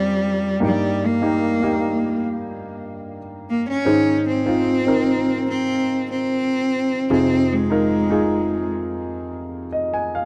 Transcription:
Already playing: grand piano F2 F3 C4 C#4 F4, cello G3
0.60 grand piano G2 G3 A#3 D#4 G4
0.65 cello G3
1.06 cello A#3
1.22 grand piano A#3 D#4 G4
1.62 grand piano A#3 D#4 G4
3.50 cello A#3
3.69 cello C#4
3.85 grand piano G#2 D#3 D#4 G#4 C5
4.28 cello C4
4.46 grand piano C4 D#4 F4
4.87 grand piano C4 D#4 A#4
5.50 cello C4
6.10 cello C4
7.10 grand piano F2 C3 D#4 F4 G#4, cello C4
7.52 cello G#3
7.70 grand piano D#4 F4 A#4
8.10 grand piano D#4 F4 G#4
9.72 grand piano D#5
9.94 grand piano G#5
10.15 grand piano F5

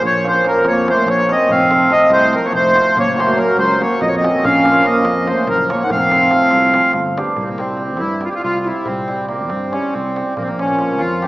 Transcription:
Already playing: hammered dulcimer F3
0.02 fretless electric bass A#1, accordion C#5, darbuka dum
0.14 darbuka tek
0.24 hammered dulcimer F3 A#3 C#4 F4, darbuka tek
0.28 accordion C5
0.44 hammered dulcimer F3 A#3 C#4 F4, darbuka tek
0.48 accordion A#4
0.64 fretless electric bass F2, clarinet A#3, accordion C#5, darbuka tek
0.76 darbuka tek
0.87 hammered dulcimer F3 A#3 C#4 F4, clarinet A3, accordion C5, darbuka tek
1.06 fretless electric bass A#1, clarinet A#3, accordion C#5, darbuka tek
1.20 darbuka tek
1.27 hammered dulcimer F3 A#3 C#4 F4, clarinet C4, darbuka tek
1.32 accordion D#5
1.40 darbuka tek
1.49 fretless electric bass F1, clarinet C4, accordion F5, darbuka dum
1.60 darbuka tek
1.69 hammered dulcimer F3 A3 C4 F4, darbuka tek
1.89 hammered dulcimer F3 A3 C4 F4, accordion D#5, darbuka tek
1.93 clarinet C4
2.10 fretless electric bass C2, clarinet A3, accordion C5, darbuka tek
2.22 darbuka tek
2.32 hammered dulcimer F3 A3 C4 F4, accordion A#4, darbuka tek
2.36 clarinet F#3
2.44 clarinet A#3, accordion C#5, darbuka tek
2.53 fretless electric bass F1, clarinet A3, accordion C5, darbuka tek, darbuka dum
2.65 darbuka tek
2.74 hammered dulcimer F3 A3 C4 F4, darbuka tek
2.87 darbuka tek
2.97 fretless electric bass F#1, clarinet A#3, accordion C#5, darbuka dum
3.09 darbuka tek
3.15 hammered dulcimer F#3 A#3 C#4 F#4, accordion C5
3.20 clarinet A3, darbuka tek
3.35 hammered dulcimer F#3 A#3 C#4 F#4, accordion A#4, darbuka tek
3.40 clarinet F#3
3.57 fretless electric bass C#2, clarinet F#3, accordion C5, darbuka tek
3.70 darbuka tek
3.79 hammered dulcimer F#3 A#3 C#4 F#4, clarinet A#3, accordion C#5, darbuka tek
3.91 darbuka tek
4.01 fretless electric bass F2, clarinet A#3, accordion D#5, darbuka tek, darbuka dum
4.08 clarinet A#3, accordion C#5
4.12 darbuka tek
4.17 clarinet C4, accordion D#5
4.23 hammered dulcimer F#3 A#3 C#4 F#4, darbuka tek
4.36 darbuka tek
4.44 fretless electric bass A#1, clarinet C#4, accordion F5, darbuka dum
4.56 darbuka tek
4.63 hammered dulcimer F3 A#3 C#4 F4, darbuka tek
4.82 hammered dulcimer F3 A#3 C#4 F4, accordion D#5
4.86 clarinet A#3, darbuka tek
5.04 fretless electric bass F2, darbuka tek
5.18 darbuka tek
5.25 hammered dulcimer F3 A#3 C#4 F4, accordion C5, darbuka tek
5.30 clarinet A3
5.37 darbuka tek
5.47 fretless electric bass F#1, clarinet F3, accordion A#4, darbuka tek, darbuka dum
5.59 darbuka tek
5.68 hammered dulcimer F3 A#3 C#4 F4, accordion C#5, darbuka tek
5.73 clarinet A#3
5.81 accordion F#5, darbuka tek
5.85 clarinet D#4
5.90 fretless electric bass F1, clarinet C4, accordion F5, darbuka dum
6.10 hammered dulcimer F3 A3 C4 F4, darbuka tek
6.22 darbuka tek
6.30 hammered dulcimer F3 A3 C4 F4, darbuka tek
6.41 darbuka tek
6.51 fretless electric bass C2, darbuka tek
6.62 darbuka tek
6.73 hammered dulcimer F3 A3 C4 F4, darbuka tek
6.84 darbuka tek
6.93 fretless electric bass G1, darbuka tek
7.17 hammered dulcimer G3 B3 D4 G4, darbuka tek
7.27 darbuka tek
7.36 fretless electric bass C2, accordion A#3, darbuka dum
7.43 accordion C4
7.49 accordion A#3
7.58 hammered dulcimer G3 C4 E4, accordion C4, darbuka tek
7.62 hammered dulcimer G4
7.69 darbuka tek
7.77 hammered dulcimer G3 C4 E4, darbuka tek
7.82 hammered dulcimer G4
7.97 fretless electric bass G2, accordion E4, darbuka tek
8.21 hammered dulcimer G3 C4 E4 G4, accordion F4, darbuka tek
8.29 accordion G4, darbuka tek
8.34 accordion F4
8.40 accordion F4, darbuka tek
8.44 fretless electric bass C2
8.64 hammered dulcimer G3 C4 E4 G4, accordion E4, darbuka tek
8.85 accordion C4, darbuka dum
8.89 fretless electric bass C2
9.08 hammered dulcimer G3 C4 E4 G4, darbuka tek
9.19 darbuka tek
9.28 hammered dulcimer G3 C4 E4 G4, accordion A#3, darbuka tek
9.48 fretless electric bass G2, accordion C4, darbuka tek
9.72 hammered dulcimer G3 C4 E4 G4, accordion C#4, darbuka tek
9.83 darbuka tek
9.92 fretless electric bass C2, accordion C4, darbuka tek
10.06 darbuka tek
10.16 hammered dulcimer G3 C4 E4 G4, darbuka tek
10.36 fretless electric bass A#1, accordion A#3, darbuka dum
10.42 accordion A#3 C4
10.59 hammered dulcimer F3 A#3 C#4 F4, accordion C#4, darbuka tek
10.69 darbuka tek
10.79 hammered dulcimer F3 A#3 C#4 F4, darbuka tek
10.99 fretless electric bass F2, accordion F4, darbuka tek
11.22 hammered dulcimer F3 A#3 C#4, accordion G4, darbuka tek

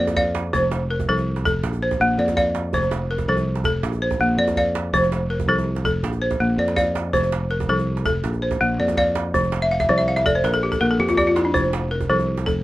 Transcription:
Already playing: balafon A#3 C5 D5
0.00 fretless electric bass F2
0.07 djembe slap, djembe tone
0.16 balafon D5 F5, djembe slap, djembe bass
0.35 djembe slap
0.53 fretless electric bass F1, balafon F3 C5, djembe bass
0.62 djembe tone
0.71 djembe slap
0.91 balafon A#4
1.00 djembe slap, djembe bass
1.09 fretless electric bass C2, balafon F3 A4, djembe slap
1.17 djembe tone
1.36 djembe slap
1.45 fretless electric bass F1, balafon A4, djembe slap, djembe bass
1.64 fretless electric bass A#1, djembe slap
1.73 djembe tone
1.83 balafon C5
1.91 djembe slap, djembe bass
2.00 fretless electric bass A#1, balafon A#3
2.18 fretless electric bass F2, balafon D5, djembe slap
2.28 djembe slap, djembe tone
2.37 balafon D5 F5, djembe slap, djembe bass
2.55 djembe slap
2.73 fretless electric bass F1, balafon F3 C5, djembe bass
2.82 djembe tone
2.91 djembe slap
3.11 balafon A#4
3.18 djembe slap, djembe bass
3.28 fretless electric bass C2, balafon F3 A4, djembe slap
3.37 djembe tone
3.55 djembe slap
3.64 fretless electric bass F1, balafon A4, djembe slap, djembe bass
3.83 fretless electric bass A#1, djembe slap
3.92 djembe tone
4.02 balafon C5
4.11 djembe slap, djembe bass
4.20 fretless electric bass A#1, balafon A#3
4.38 fretless electric bass F2, balafon D5
4.48 djembe slap, djembe tone
4.57 balafon D5 F5, djembe slap, djembe bass
4.75 djembe slap
4.93 fretless electric bass F1, balafon F3 C5, djembe bass
5.03 djembe tone
5.12 djembe slap
5.21 djembe slap
5.30 balafon A#4, djembe slap
5.40 djembe slap, djembe bass
5.48 fretless electric bass C2, balafon F3 A4
5.58 djembe tone
5.67 djembe slap
5.76 djembe slap
5.85 fretless electric bass F1, balafon A4, djembe slap, djembe bass
6.03 fretless electric bass A#1, djembe slap
6.12 djembe slap, djembe tone
6.22 balafon C5
6.31 djembe slap, djembe bass
6.40 fretless electric bass A#1, balafon A#3
6.58 fretless electric bass F2, balafon D5
6.68 djembe slap
6.76 balafon D5 F5, djembe bass
6.86 djembe slap
6.95 djembe slap
7.05 djembe slap
7.13 fretless electric bass F1, balafon F3 C5, djembe bass
7.23 djembe tone
7.32 djembe slap
7.51 balafon A#4
7.60 djembe slap, djembe bass
7.69 fretless electric bass C2, balafon F3 A4, djembe slap
7.78 djembe tone
7.97 djembe slap
8.05 fretless electric bass F1, balafon A4, djembe slap, djembe bass
8.24 fretless electric bass A#1, djembe slap
8.33 djembe tone
8.42 balafon C5
8.51 djembe slap, djembe bass
8.61 fretless electric bass A#1, balafon A#3
8.79 fretless electric bass F2, balafon D5, djembe slap
8.88 djembe slap, djembe tone
8.97 balafon D5 F5, djembe slap, djembe bass
9.15 djembe slap
9.34 fretless electric bass F1, balafon F3, djembe bass
9.43 djembe tone
9.52 djembe slap
9.62 balafon E5
9.71 balafon F5
9.80 balafon E5, djembe slap, djembe bass
9.89 fretless electric bass C2, balafon F3 D5, djembe slap
9.98 balafon E5, djembe tone
10.08 balafon F5
10.16 balafon E5, djembe slap
10.26 fretless electric bass F1, balafon A4 D5, djembe slap, djembe bass
10.35 balafon C5
10.44 fretless electric bass A#1, balafon A#4, djembe slap
10.53 balafon A4, djembe tone
10.63 balafon G4
10.72 balafon A4, djembe bass
10.81 fretless electric bass A#1, balafon A#3 A#4
10.91 balafon A4
10.99 fretless electric bass F2, balafon G4, djembe slap
11.08 balafon F4, djembe slap, djembe tone
11.17 balafon G4 D5, djembe slap, djembe bass
11.27 balafon F4
11.36 balafon E4, djembe slap
11.45 balafon D4
11.54 fretless electric bass F1, balafon F3 C5, djembe bass
11.64 djembe tone
11.73 djembe slap
11.91 balafon A#4
12.00 djembe slap, djembe bass
12.10 fretless electric bass C2, balafon F3 A4, djembe slap
12.19 djembe tone
12.37 djembe slap
12.46 fretless electric bass F1, balafon A4, djembe slap, djembe bass

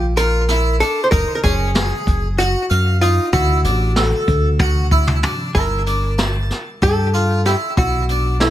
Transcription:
Already playing: fingered electric bass A#1, hollow-body jazz guitar F4
0.17 harpsichord F4, hollow-body jazz guitar A#4, closed hi-hat
0.48 harpsichord E4, snare, closed hi-hat
0.80 harpsichord D4, hollow-body jazz guitar A4, closed hi-hat
1.04 hollow-body jazz guitar C5
1.11 fingered electric bass F#1, harpsichord D#4, hollow-body jazz guitar A#4, kick, closed hi-hat
1.35 hollow-body jazz guitar A#4
1.44 fingered electric bass F#1, harpsichord C#4, hollow-body jazz guitar G#4, kick, closed hi-hat
1.75 harpsichord G#4, snare, closed hi-hat
2.07 fingered electric bass F#1, kick, closed hi-hat
2.38 harpsichord F#4, hollow-body jazz guitar F#4, closed hi-hat
2.70 fingered electric bass F#2, harpsichord F5, closed hi-hat
3.01 harpsichord D#4, hollow-body jazz guitar F4, closed hi-hat
3.33 fingered electric bass D2, harpsichord E4, hollow-body jazz guitar F#4, kick, closed hi-hat
3.64 fingered electric bass A1, harpsichord D4, closed hi-hat
3.96 harpsichord A4, snare, closed hi-hat
4.28 fingered electric bass D2, kick, closed hi-hat
4.59 harpsichord F#4, kick, high tom
4.91 harpsichord E4, kick
5.07 mid tom
5.23 harpsichord D4, floor tom
5.55 fingered electric bass G1, harpsichord E4, hollow-body jazz guitar A#4, kick, closed hi-hat
5.87 harpsichord D4, closed hi-hat
6.18 harpsichord A5, snare, closed hi-hat
6.50 snare, closed hi-hat
6.82 fingered electric bass G2, harpsichord G4, hollow-body jazz guitar A4, kick, closed hi-hat
7.14 harpsichord F4, closed hi-hat
7.45 harpsichord E4, hollow-body jazz guitar G4, snare, closed hi-hat
7.77 fingered electric bass B1, harpsichord E4, hollow-body jazz guitar F#4, kick, closed hi-hat
8.09 harpsichord D4, closed hi-hat
8.40 hollow-body jazz guitar E4, harpsichord A4, snare, closed hi-hat

